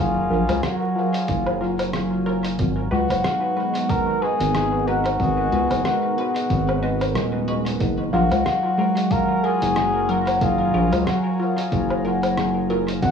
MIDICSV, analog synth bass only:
0, 0, Header, 1, 2, 480
1, 0, Start_track
1, 0, Tempo, 652174
1, 1906, Time_signature, 4, 2, 24, 8
1, 9650, End_track
2, 0, Start_track
2, 0, Title_t, "Analog synth bass"
2, 0, Program_c, 0, 38
2, 0, Note_on_c, 0, 30, 97
2, 201, Note_off_c, 0, 30, 0
2, 223, Note_on_c, 0, 34, 92
2, 344, Note_off_c, 0, 34, 0
2, 360, Note_on_c, 0, 37, 86
2, 453, Note_off_c, 0, 37, 0
2, 946, Note_on_c, 0, 30, 94
2, 1886, Note_off_c, 0, 30, 0
2, 1907, Note_on_c, 0, 32, 100
2, 2122, Note_off_c, 0, 32, 0
2, 2145, Note_on_c, 0, 37, 95
2, 2265, Note_off_c, 0, 37, 0
2, 2278, Note_on_c, 0, 30, 85
2, 2372, Note_off_c, 0, 30, 0
2, 3238, Note_on_c, 0, 32, 87
2, 3804, Note_off_c, 0, 32, 0
2, 3826, Note_on_c, 0, 32, 101
2, 4041, Note_off_c, 0, 32, 0
2, 4065, Note_on_c, 0, 37, 93
2, 4185, Note_off_c, 0, 37, 0
2, 4202, Note_on_c, 0, 30, 86
2, 4294, Note_off_c, 0, 30, 0
2, 4785, Note_on_c, 0, 32, 95
2, 5258, Note_off_c, 0, 32, 0
2, 5262, Note_on_c, 0, 27, 75
2, 5724, Note_off_c, 0, 27, 0
2, 5744, Note_on_c, 0, 30, 101
2, 5960, Note_off_c, 0, 30, 0
2, 5983, Note_on_c, 0, 34, 93
2, 6104, Note_off_c, 0, 34, 0
2, 6121, Note_on_c, 0, 37, 88
2, 6213, Note_off_c, 0, 37, 0
2, 7081, Note_on_c, 0, 30, 87
2, 7646, Note_off_c, 0, 30, 0
2, 7665, Note_on_c, 0, 30, 100
2, 7880, Note_off_c, 0, 30, 0
2, 7907, Note_on_c, 0, 34, 95
2, 8026, Note_off_c, 0, 34, 0
2, 8044, Note_on_c, 0, 37, 85
2, 8135, Note_off_c, 0, 37, 0
2, 8625, Note_on_c, 0, 30, 94
2, 9566, Note_off_c, 0, 30, 0
2, 9588, Note_on_c, 0, 32, 100
2, 9650, Note_off_c, 0, 32, 0
2, 9650, End_track
0, 0, End_of_file